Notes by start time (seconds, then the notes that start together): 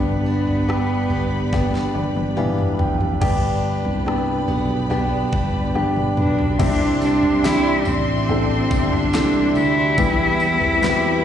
Already playing: G1 G2 B3 D4 G4 B4 D5 B5
0.26 D4
0.47 floor tom
0.68 B3 D4 G4, cross-stick
1.10 G1 G4, floor tom
1.52 B3 D4 G4, kick, snare
1.75 snare
1.95 G1 D5, high tom
2.16 high tom
2.36 E3 B3 D4 G4 F5, mid tom
2.58 mid tom
2.79 F1 G5, floor tom
3.01 floor tom
3.21 G1 G2 B3 D4 G4 B4 D5 B5, kick, floor tom, crash
3.85 C2, floor tom
4.06 B3 D4 G4, cross-stick
4.48 B1 B3, floor tom
4.90 B3 D4 G4, floor tom
5.32 G1 D4, kick
5.54 floor tom
5.75 B3 D4 G4, high tom
5.96 mid tom
6.17 B1 B3 D4, mid tom
6.39 floor tom
6.59 C2 C3 C4 D4 E4 G4 D5 E5 C6, kick, floor tom, crash, tambourine
7.01 G3 D4, tambourine
7.23 C2, floor tom
7.43 C4 D4 E4 G4, snare, tambourine
7.85 A1 C4, floor tom, tambourine
8.29 C4 D4 E4 A4, floor tom
8.70 G1 G3, kick, tambourine
8.92 D4, floor tom
9.13 C2 C4 D4 E4 A4, snare, tambourine
9.55 D2 G3 E4, tambourine
9.97 E2 E3 G3 B3 E4 G4 B4 B5, kick, floor tom, tambourine
10.40 G3 B3, tambourine
10.61 E2 C4, floor tom
10.82 G3 E4 F#4 B4, snare, tambourine
10.89 G4